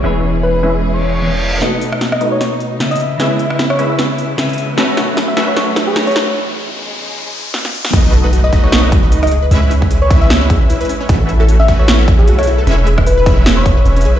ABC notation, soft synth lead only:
X:1
M:4/4
L:1/16
Q:"Swing 16ths" 1/4=152
K:E
V:1 name="Soft synth lead"
z4 B3 z2 c6 z | z4 z d z c c z4 d z2 | z4 z c z e e z6 z | z4 z e z c c z2 G z c z2 |
z16 | z4 z d z c c z4 d z2 | z4 z c z e e z6 z | z4 z e z c c z2 G z c z2 |
z4 B3 z2 c6 z |]